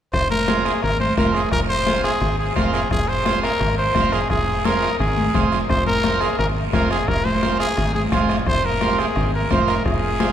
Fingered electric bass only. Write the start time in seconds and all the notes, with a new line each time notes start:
0.13 F1
0.83 G#1
1.18 F1
1.52 F1
2.21 G#1
2.56 F1
2.91 F1
3.60 G#1
3.95 F1
4.30 F1
5.00 G#1
5.35 F1
5.70 F1
6.39 G#1
6.73 F1
7.08 F1
7.78 G#1
8.12 F1
8.47 F1
9.16 G#1
9.51 F1
9.85 F1